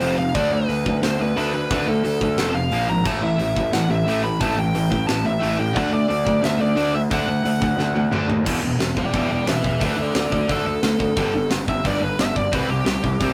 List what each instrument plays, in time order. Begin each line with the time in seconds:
Already playing: lead electric guitar C5
0.00 picked electric bass F1, distorted electric guitar F2 C3 F3, open hi-hat
0.17 picked electric bass F1, distorted electric guitar F2 C3, lead electric guitar F5
0.34 picked electric bass D2, distorted electric guitar D3 A3 D4, lead electric guitar D5, kick, open hi-hat
0.52 distorted electric guitar D3 A3, lead electric guitar B4
0.69 picked electric bass D2, distorted electric guitar D3 A3, open hi-hat
0.86 picked electric bass D2, distorted electric guitar D3 A3, kick
1.03 picked electric bass D2, distorted electric guitar D3 A3, lead electric guitar C5, snare, open hi-hat
1.19 picked electric bass D2, distorted electric guitar D3 A3, lead electric guitar B4
1.36 picked electric bass D2, distorted electric guitar D3 A3 D4, lead electric guitar B4, open hi-hat
1.53 distorted electric guitar D3 A3, lead electric guitar B4
1.70 picked electric bass D2, distorted electric guitar D3 A3 D4, lead electric guitar B4, kick, open hi-hat
1.88 picked electric bass D2, distorted electric guitar D3 A3, lead electric guitar A4
2.04 picked electric bass D2, distorted electric guitar D3 A3, open hi-hat
2.21 picked electric bass D2, distorted electric guitar D3 A3, kick
2.38 picked electric bass F1, distorted electric guitar F2 C3 F3, snare, open hi-hat
2.54 distorted electric guitar F2 C3, lead electric guitar F5
2.71 picked electric bass A#1, distorted electric guitar A#2 F3 A#3, open hi-hat
2.89 picked electric bass G#1, distorted electric guitar A#2 F3, lead electric guitar A#5
3.05 picked electric bass A1, distorted electric guitar A2 E3 A3, lead electric guitar A5, kick, crash
3.22 distorted electric guitar A2 E3, lead electric guitar E5
3.38 picked electric bass A1, distorted electric guitar A2 E3, open hi-hat
3.56 picked electric bass A1, distorted electric guitar A2 E3, kick
3.73 picked electric bass A1, distorted electric guitar A2 E3, lead electric guitar F#5, snare, open hi-hat
3.89 picked electric bass A1, distorted electric guitar A2 E3, lead electric guitar E5
4.07 picked electric bass A1, distorted electric guitar A2 E3 A3, open hi-hat
4.24 distorted electric guitar A2 E3, lead electric guitar B5
4.40 picked electric bass A1, distorted electric guitar A2 E3 A3, lead electric guitar A5, kick, open hi-hat
4.57 picked electric bass A1, distorted electric guitar A2 E3, lead electric guitar G5
4.75 picked electric bass A1, distorted electric guitar A2 E3, open hi-hat
4.90 picked electric bass A1, distorted electric guitar A2 E3, kick
5.07 picked electric bass A1, distorted electric guitar A2 E3, lead electric guitar A5, snare, open hi-hat
5.25 distorted electric guitar A2 E3, lead electric guitar E5
5.40 picked electric bass A1, distorted electric guitar A2 E3 A3, open hi-hat
5.59 picked electric bass A1, distorted electric guitar A2 E3, lead electric guitar G5
5.73 picked electric bass D2, distorted electric guitar D3 A3 D4, lead electric guitar F#5, kick, open hi-hat
5.91 distorted electric guitar D3 A3, lead electric guitar D5
6.08 picked electric bass D2, distorted electric guitar D3 A3, open hi-hat
6.25 picked electric bass D2, distorted electric guitar D3 A3, kick
6.42 picked electric bass D2, distorted electric guitar D3 A3, lead electric guitar E5, snare, open hi-hat
6.58 picked electric bass D2, distorted electric guitar D3 A3, lead electric guitar D5
6.76 picked electric bass D2, distorted electric guitar D3 A3 D4, open hi-hat
6.92 distorted electric guitar D3 A3, lead electric guitar E5
7.11 picked electric bass D2, distorted electric guitar D3 A3 D4, lead electric guitar F#5, kick, open hi-hat
7.27 picked electric bass D2, distorted electric guitar D3 A3
7.44 picked electric bass D2, distorted electric guitar D3 A3, open hi-hat
7.62 picked electric bass D2, distorted electric guitar D3 A3, kick
7.77 picked electric bass D2, distorted electric guitar D3 A3, snare
7.95 distorted electric guitar D3 A3, high tom
8.12 picked electric bass D2, distorted electric guitar D3 A3 D4, mid tom
8.29 picked electric bass D#2, distorted electric guitar D3 A3, floor tom
8.45 picked electric bass E1, distorted electric guitar E2 B2 E3, kick, crash
8.62 picked electric bass E1, distorted electric guitar E2 B2
8.79 picked electric bass E1, distorted electric guitar E2 B2, snare, open hi-hat
8.96 picked electric bass E1, distorted electric guitar E2 B2, lead electric guitar D5 G5, kick
9.13 picked electric bass E1, distorted electric guitar E2 B2 E3, lead electric guitar D5 G5, kick, open hi-hat
9.30 picked electric bass E1, distorted electric guitar E2 B2, lead electric guitar D5 G5
9.46 picked electric bass E1, distorted electric guitar E2 B2, lead electric guitar B4 E5, snare, open hi-hat
9.63 picked electric bass E1, distorted electric guitar E2 B2, lead electric guitar B4 E5, kick
9.80 picked electric bass D2, distorted electric guitar D3 A3 D4, lead electric guitar B4, kick, open hi-hat
9.84 lead electric guitar E5
9.97 picked electric bass D2, distorted electric guitar D3 A3, lead electric guitar A4
10.02 lead electric guitar D5
10.14 picked electric bass D2, distorted electric guitar D3 A3, lead electric guitar A4 D5, snare, open hi-hat
10.31 picked electric bass D2, distorted electric guitar D3 A3, lead electric guitar A4 D5, kick
10.48 picked electric bass D2, distorted electric guitar D3 A3 D4, lead electric guitar A4, kick, open hi-hat
10.65 picked electric bass D2, distorted electric guitar D3 A3
10.83 picked electric bass D2, distorted electric guitar D3 A3, snare, open hi-hat
10.99 picked electric bass D2, distorted electric guitar D3 A3, kick
11.16 picked electric bass G1, distorted electric guitar G2 D3 G3, kick, open hi-hat
11.34 picked electric bass G1, distorted electric guitar G2 D3
11.50 picked electric bass G1, distorted electric guitar G2 D3, snare, open hi-hat
11.68 picked electric bass G1, distorted electric guitar G2 D3, lead electric guitar E5, kick
11.84 picked electric bass G1, distorted electric guitar G2 D3 G3, lead electric guitar D5, kick, open hi-hat
12.01 picked electric bass G1, distorted electric guitar G2 D3, lead electric guitar B4
12.19 picked electric bass G1, distorted electric guitar G2 D3, lead electric guitar E5, snare, open hi-hat
12.34 picked electric bass G1, distorted electric guitar G2 D3, lead electric guitar D5, kick
12.52 picked electric bass C2, distorted electric guitar C3 G3 C4, lead electric guitar B4, kick, open hi-hat
12.69 picked electric bass C2, distorted electric guitar C3 G3, lead electric guitar G4
12.84 picked electric bass C2, distorted electric guitar C3 G3, snare, open hi-hat
13.03 picked electric bass C2, distorted electric guitar C3 G3, kick
13.20 picked electric bass C2, distorted electric guitar C3 G3 C4, kick, open hi-hat